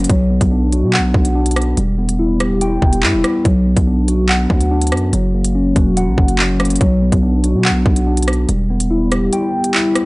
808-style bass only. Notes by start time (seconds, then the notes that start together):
0.10 B1
0.41 B1
0.83 B2
0.99 B1
1.14 B1
1.77 E1
2.82 E1
3.03 G2
3.14 E1
3.45 B1
3.77 B1
4.50 D2
4.92 F#2
5.13 F#1
5.76 E1
6.07 A#1
6.18 F#1
6.81 B1
7.12 B1
7.54 B2
7.70 B1
7.86 B1
8.49 E1